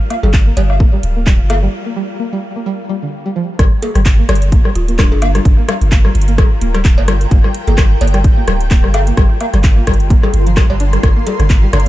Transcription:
Already playing: ambient pad F4 A#4 F5
0.10 synth pluck A#3, closed hi-hat, low woodblock
0.23 sub bass G1, synth pluck G3, cowbell
0.34 kick, clap
0.47 synth pluck A#3
0.57 sub bass G1, synth pluck G3, closed hi-hat, cowbell
0.70 low woodblock
0.80 synth pluck A#3, kick
0.93 synth pluck G3
1.03 sub bass D1, closed hi-hat
1.16 synth pluck A#3
1.27 synth pluck G3, kick, clap
1.40 sub bass G1
1.50 synth pluck A#3, closed hi-hat, cowbell, low woodblock
1.63 synth pluck G3
1.86 synth pluck A#3
1.96 synth pluck G3
2.20 synth pluck A#3
2.33 synth pluck G3
2.56 synth pluck A#3
2.66 synth pluck G3
2.89 synth pluck G3
3.02 synth pluck D3
3.26 synth pluck G3
3.36 synth pluck F3
3.59 sub bass G1, synth pluck G3, ambient pad F4, kick, cross-stick, closed hi-hat
3.71 ambient pad A#4
3.82 synth pluck A#3, closed hi-hat, cowbell
3.95 sub bass G1, synth pluck G3, cross-stick, closed hi-hat
4.06 kick, clap, closed hi-hat
4.19 synth pluck A#3
4.29 sub bass G1, synth pluck G3, cross-stick, closed hi-hat, cowbell
4.35 closed hi-hat
4.42 closed hi-hat
4.52 synth pluck A#3, kick, closed hi-hat
4.65 synth pluck G3, cross-stick
4.75 sub bass D1, marimba F4, closed hi-hat
4.88 synth pluck A#3, marimba F4, closed hi-hat
4.99 synth pluck G3, marimba D4, kick, cross-stick, clap, closed hi-hat
5.12 sub bass G1, marimba D4, cowbell
5.22 synth pluck A#3, closed hi-hat, low woodblock
5.34 synth pluck G3, ambient pad G5, cross-stick, closed hi-hat
5.45 sub bass G1, kick, closed hi-hat
5.58 synth pluck A#3
5.69 synth pluck G3, cross-stick, closed hi-hat, low woodblock
5.81 sub bass G1, closed hi-hat
5.92 synth pluck A#3, kick, clap, closed hi-hat
6.05 synth pluck G3, cross-stick
6.15 sub bass G1, closed hi-hat
6.22 closed hi-hat
6.28 synth pluck A#3, closed hi-hat
6.38 synth pluck G3, kick, cross-stick, closed hi-hat, cowbell
6.61 sub bass D1, synth pluck A#3, closed hi-hat
6.75 synth pluck G3, cross-stick, closed hi-hat
6.85 kick, clap, closed hi-hat
6.98 sub bass G1, synth pluck A#3, cowbell
7.08 synth pluck G3, cross-stick, closed hi-hat
7.21 closed hi-hat
7.31 sub bass G1, synth pluck A#3, kick, closed hi-hat
7.44 synth pluck G3, cross-stick
7.55 closed hi-hat
7.67 sub bass G1, synth pluck A#3, closed hi-hat, cowbell
7.78 synth pluck G3, kick, cross-stick, clap, closed hi-hat
8.01 sub bass G1, synth pluck A#3, closed hi-hat, cowbell
8.07 closed hi-hat
8.14 synth pluck G3, cross-stick, closed hi-hat
8.24 kick, closed hi-hat
8.37 synth pluck A#3
8.48 sub bass D1, synth pluck G3, cross-stick, closed hi-hat
8.61 closed hi-hat
8.71 synth pluck A#3, kick, clap, closed hi-hat
8.84 sub bass G1, synth pluck G3, cross-stick
8.94 closed hi-hat, cowbell, low woodblock
9.06 synth pluck A#3, ambient pad C6, closed hi-hat
9.17 sub bass G1, synth pluck G3, kick, cross-stick, closed hi-hat
9.41 synth pluck A#3, closed hi-hat, low woodblock
9.54 sub bass G1, synth pluck G3, cross-stick, closed hi-hat
9.64 kick, clap, closed hi-hat
9.77 synth pluck A#3
9.87 sub bass G1, synth pluck G3, kick, cross-stick, closed hi-hat
9.94 closed hi-hat
10.00 closed hi-hat
10.10 synth pluck A#3, kick, closed hi-hat
10.23 synth pluck G3, cross-stick, cowbell
10.34 sub bass G1, closed hi-hat
10.47 synth pluck F3, closed hi-hat
10.57 synth pluck G3, kick, cross-stick, clap, closed hi-hat
10.70 sub bass G1, synth pluck G3, cowbell
10.80 synth pluck D4, closed hi-hat
10.93 synth pluck G3, cross-stick, closed hi-hat
11.03 sub bass G1, synth pluck D3, kick, cross-stick, closed hi-hat
11.16 synth pluck A#3
11.27 synth pluck G3, closed hi-hat, cowbell
11.40 sub bass G1, synth pluck D3, cross-stick, closed hi-hat
11.50 synth pluck A#3, kick, clap, closed hi-hat
11.63 synth pluck G3
11.73 sub bass G1, synth pluck D3, cross-stick, closed hi-hat, cowbell
11.80 closed hi-hat

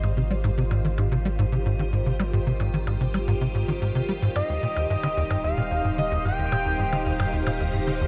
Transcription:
Already playing: sub bass G#1, synth texture D#3 D#7, string machine F4 G4 C5 F5
0.03 analog synth bass G#2, percussion blips, shaker
0.17 analog synth bass C3, shaker
0.31 analog synth bass G3, shaker
0.44 analog synth bass G#2, percussion blips, shaker
0.58 analog synth bass C3, shaker
0.71 analog synth bass G#2, percussion blips, shaker
0.85 analog synth bass D#3, shaker
0.98 analog synth bass G#2, percussion blips, shaker
1.12 analog synth bass C3, shaker
1.25 analog synth bass G3, shaker
1.39 analog synth bass G#2, shaker
1.52 analog synth bass C3, shaker
1.66 analog synth bass G#2, shaker
1.79 analog synth bass D#3, shaker
1.93 analog synth bass G#2, shaker
2.06 analog synth bass C3, shaker
2.20 analog synth bass G3, percussion blips, shaker
2.33 analog synth bass G#2, shaker
2.47 analog synth bass C3, shaker
2.60 analog synth bass G#2, percussion blips, shaker
2.74 analog synth bass D#3, shaker
2.87 analog synth bass G#2, percussion blips, shaker
3.01 analog synth bass C3, shaker
3.14 analog synth bass G3, percussion blips, shaker
3.28 analog synth bass G#2, shaker
3.41 analog synth bass C3, shaker
3.55 analog synth bass G#2, shaker
3.68 analog synth bass D#3, shaker
3.82 analog synth bass G#2, shaker
3.95 analog synth bass C3, shaker
4.09 analog synth bass G3, shaker
4.22 analog synth bass G#2, shaker
4.36 sub bass D#1, analog synth bass G2, string machine D#4, analog synth lead D#5, percussion blips, shaker
4.49 analog synth bass D#2, shaker
4.62 analog synth bass A#2, string machine C5, shaker
4.76 analog synth bass D#2, percussion blips, shaker
4.90 analog synth bass G2, analog synth lead D#5, shaker
5.03 analog synth bass D3, percussion blips, shaker
5.17 analog synth bass D#2, shaker
5.30 analog synth bass G2, percussion blips, shaker
5.38 string machine F5
5.44 analog synth bass D#2, analog synth lead F5, shaker
5.57 analog synth bass A#2, shaker
5.71 analog synth bass D#2, shaker
5.84 analog synth bass G2, shaker
5.98 analog synth bass D3, analog synth lead D#5, shaker
6.11 analog synth bass D#2, shaker
6.25 analog synth bass G2, analog synth lead G5, shaker
6.38 analog synth bass D#2, shaker
6.52 analog synth bass A#2, percussion blips, shaker
6.66 analog synth bass D#2, shaker
6.79 analog synth bass G2, shaker
6.93 analog synth bass D3, percussion blips, shaker
7.06 analog synth bass D#2, shaker
7.20 analog synth bass G2, percussion blips, shaker
7.33 analog synth bass D#2, shaker
7.47 analog synth bass A#2, percussion blips, shaker
7.60 analog synth bass D#2, shaker
7.74 analog synth bass G2, shaker
7.87 analog synth bass D3, shaker
8.01 analog synth bass D#2, shaker

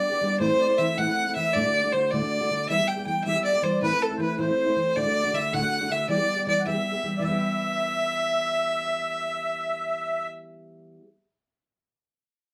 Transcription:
Already playing: steel-string acoustic guitar B3 D4, fiddle D5, accordion D5
0.11 steel-string acoustic guitar B3 D4 G4
0.21 steel-string acoustic guitar G3 B3 D4 G4
0.40 steel-string acoustic guitar A2 E3 A3 C4 E4, accordion C5, fiddle C5
0.49 steel-string acoustic guitar A3 C4 E4
0.59 accordion D5
0.68 steel-string acoustic guitar A3 C4 E4
0.78 steel-string acoustic guitar E3 A3 C4 E4, accordion E5, fiddle E5
0.97 steel-string acoustic guitar A2 E3 A3 C4 E4, accordion F#5, fiddle F#5
1.07 steel-string acoustic guitar A3 C4 E4
1.26 steel-string acoustic guitar A3 C4 E4
1.35 steel-string acoustic guitar E3 A3 C4 E4, accordion E5, fiddle E5
1.54 steel-string acoustic guitar D2 A2 D3 A3 D4 F#4, fiddle D5, accordion D5
1.64 steel-string acoustic guitar D3 A3 D4 F#4
1.83 steel-string acoustic guitar D3 A3 D4 F#4
1.92 steel-string acoustic guitar D3 A3 D4 F#4, fiddle C5, accordion C5
2.11 steel-string acoustic guitar D2 A2 D3 A3 D4 F#4, fiddle D5, accordion D5
2.21 steel-string acoustic guitar D3 A3 D4 F#4
2.41 steel-string acoustic guitar D3 A3 D4 F#4
2.51 steel-string acoustic guitar D3 A3 D4 F#4
2.68 steel-string acoustic guitar E3 G3 B3 G4, accordion E5, fiddle E5
2.79 steel-string acoustic guitar G3 B3 G4
2.88 fiddle G5, accordion G5
2.97 steel-string acoustic guitar G3 B3 G4
3.06 steel-string acoustic guitar E3 G3 B3 G4, fiddle G5, accordion G5
3.24 steel-string acoustic guitar E3 G3 B3 G4, fiddle E5, accordion E5
3.35 steel-string acoustic guitar G3 B3 G4, accordion E5
3.45 fiddle D5, accordion D5
3.54 steel-string acoustic guitar G3 B3 G4
3.62 steel-string acoustic guitar E3 G3 B3 G4, fiddle C5
3.81 steel-string acoustic guitar A2 E3 A3 C4 E4, accordion B4, fiddle B4
3.93 steel-string acoustic guitar A3
4.01 accordion A4, fiddle A4
4.09 steel-string acoustic guitar A3 C4 E4
4.16 steel-string acoustic guitar E3 C4, accordion C5
4.20 steel-string acoustic guitar A3 E4, accordion B4, fiddle B4
4.38 steel-string acoustic guitar A2 E3 A3 C4 E4, fiddle C5, accordion C5
4.48 steel-string acoustic guitar A3 C4 E4
4.66 steel-string acoustic guitar A3 C4 E4
4.76 steel-string acoustic guitar E3 A3 C4 E4
4.95 steel-string acoustic guitar D2 A2 D3 A3 D4 F#4, fiddle D5, accordion D5
5.04 steel-string acoustic guitar D3 A3 D4 F#4
5.24 steel-string acoustic guitar D3 A3 D4 F#4
5.33 steel-string acoustic guitar D3 A3 D4 F#4, fiddle E5, accordion E5
5.53 steel-string acoustic guitar D2 A2 D3 A3 D4 F#4, accordion F#5, fiddle F#5
5.62 steel-string acoustic guitar D3 A3 D4 F#4
5.72 accordion F#5
5.80 steel-string acoustic guitar D3 A3 D4 F#4
5.90 steel-string acoustic guitar D3 A3 D4 F#4, accordion E5, fiddle E5
6.08 steel-string acoustic guitar E3 G3 B3 G4, accordion D5, fiddle D5
6.18 steel-string acoustic guitar G3 B3 G4
6.37 steel-string acoustic guitar G3 B3 G4
6.47 steel-string acoustic guitar E3 G3 B3 G4, accordion D5, fiddle D5
6.59 accordion F#5
6.66 steel-string acoustic guitar E3 G3 B3 G4, accordion E5, fiddle E5
6.75 steel-string acoustic guitar G3 B3 G4
6.93 steel-string acoustic guitar G3 B3 G4
7.03 steel-string acoustic guitar E3 G3 B3 G4
7.17 steel-string acoustic guitar E3, accordion D5
7.24 steel-string acoustic guitar G3 B3, accordion E5, fiddle E5
7.31 steel-string acoustic guitar G4

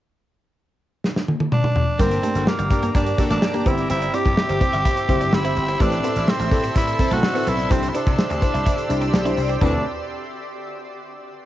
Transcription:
1.04 snare
1.16 snare
1.28 high tom
1.40 high tom
1.52 tenor saxophone D4, mid tom
1.64 mid tom
1.76 floor tom
1.99 slap bass G1, fm electric piano G2 A#3 D4 G4 A#4, clean electric guitar G3, tenor saxophone C4, analog polysynth D4 G4 A#4, ambient pad G4 D5 A#5 D6, kick, closed hi-hat
2.11 muted clean electric guitar stroke, closed hi-hat
2.22 clean electric guitar A3, fm electric piano A#3 D4 G4 A#4, closed hi-hat
2.35 slap bass G1, analog polysynth D4 F#4 A4, closed hi-hat
2.47 tenor saxophone A#3, snare
2.59 slap bass G1, clean electric guitar G3, closed hi-hat
2.70 slap bass G2, fm electric piano A#3 D4 G4 A#4, analog polysynth D4 G4 A#4, muted clean electric guitar stroke, kick, closed hi-hat
2.83 clean electric guitar A#3, closed hi-hat
2.95 slap bass G2, clean electric guitar A#3, analog polysynth D4 G4 A#4, tenor saxophone D4, kick, closed hi-hat
3.07 muted clean electric guitar stroke, closed hi-hat
3.18 fm electric piano A#3 D4 G4 A#4, analog polysynth D4 F#4 A4, kick, closed hi-hat
3.30 slap bass A1, clean electric guitar A3, tenor saxophone D4, closed hi-hat
3.42 muted clean electric guitar stroke, snare
3.54 fm electric piano A#3 D4 G4 A#4, clean electric guitar A#3, closed hi-hat
3.66 slap bass G1, fm electric piano G2 C4 E4 G4 C5, clean electric guitar B3, tenor saxophone E4, ambient pad E5 C6 E6, kick, closed hi-hat
3.78 closed hi-hat
3.90 slap bass G1, clean electric guitar C4, tenor saxophone E4, closed hi-hat
4.02 muted clean electric guitar stroke, closed hi-hat
4.13 fm electric piano C4 E4 G4 C5, clean electric guitar D4, tenor saxophone G4, closed hi-hat
4.25 slap bass G2, kick, closed hi-hat
4.37 snare
4.49 slap bass G1, clean electric guitar C4, closed hi-hat
4.60 fm electric piano C4 E4 G4 C5, muted clean electric guitar stroke, kick, closed hi-hat
4.73 slap bass G1, clean electric guitar E4, closed hi-hat
4.85 clean electric guitar E4, kick, closed hi-hat
4.97 muted clean electric guitar stroke, closed hi-hat
5.08 slap bass F#1, fm electric piano C4 E4 G4 C5, kick, closed hi-hat
5.21 clean electric guitar D4, closed hi-hat
5.33 slap bass G1, tenor saxophone E4, snare
5.44 fm electric piano C4 E4 G4 C5, clean electric guitar E4, closed hi-hat
5.56 slap bass G1, muted clean electric guitar stroke, closed hi-hat
5.68 clean electric guitar C4, closed hi-hat
5.80 slap bass A1, fm electric piano A2 C4 E4 A4 C5, clean electric guitar A3, tenor saxophone D4, analog polysynth E4 G4 B4, ambient pad A4, kick, closed hi-hat
5.92 muted clean electric guitar stroke, closed hi-hat
6.04 clean electric guitar B3, fm electric piano C4 E4 A4 C5, closed hi-hat
6.16 slap bass A1, analog polysynth C4 E4 A4, closed hi-hat
6.28 tenor saxophone C4, snare
6.40 slap bass A1, clean electric guitar A3, closed hi-hat
6.51 slap bass A2, fm electric piano C4 E4 A4 D5, analog polysynth E4 G4 B4, muted clean electric guitar stroke, kick, closed hi-hat
6.64 clean electric guitar C4, closed hi-hat
6.76 slap bass A2, clean electric guitar C4, analog polysynth E4 G4 B4, tenor saxophone E4, kick, closed hi-hat
6.87 muted clean electric guitar stroke, closed hi-hat
6.99 fm electric piano C4 E4 A4 C5, analog polysynth C4 E4 A4, kick, closed hi-hat
7.11 slap bass B1, clean electric guitar A3, tenor saxophone F#4, closed hi-hat
7.23 muted clean electric guitar stroke, snare
7.35 clean electric guitar B3, fm electric piano C4 E4 A4 C5, closed hi-hat
7.47 slap bass B1, clean electric guitar B3, tenor saxophone E4, closed hi-hat
7.59 closed hi-hat
7.70 slap bass C2, fm electric piano C3 D4 E4 G4 C5, clean electric guitar C4, tenor saxophone C4, ambient pad G4 D5 E6, kick, closed hi-hat
7.83 muted clean electric guitar stroke, closed hi-hat
7.89 tenor saxophone E4
7.94 fm electric piano D4 E4 G4 C5, clean electric guitar D4, tenor saxophone D4, closed hi-hat
8.07 slap bass C3, kick, closed hi-hat
8.18 snare, tambourine
8.30 slap bass D2, clean electric guitar C4, closed hi-hat
8.42 fm electric piano D4 E4 G4 C5, muted clean electric guitar stroke, kick, closed hi-hat
8.54 slap bass C2, clean electric guitar E4, closed hi-hat
8.66 clean electric guitar E4, kick, closed hi-hat
8.78 muted clean electric guitar stroke, closed hi-hat
8.89 slap bass C2, fm electric piano D4 E4 G4 D5, closed hi-hat
9.02 clean electric guitar D4, closed hi-hat
9.14 slap bass B1, snare, tambourine
9.25 fm electric piano D4 E4 G4 C5, clean electric guitar E4, closed hi-hat
9.37 slap bass C2, muted clean electric guitar stroke, open hi-hat
9.49 clean electric guitar C4, closed hi-hat
9.61 fm electric piano D2 C4 E4 F#4 B4, slap bass D2, analog polysynth F#3 E4 A4, clean electric guitar D4, tenor saxophone D4, kick, floor tom, china

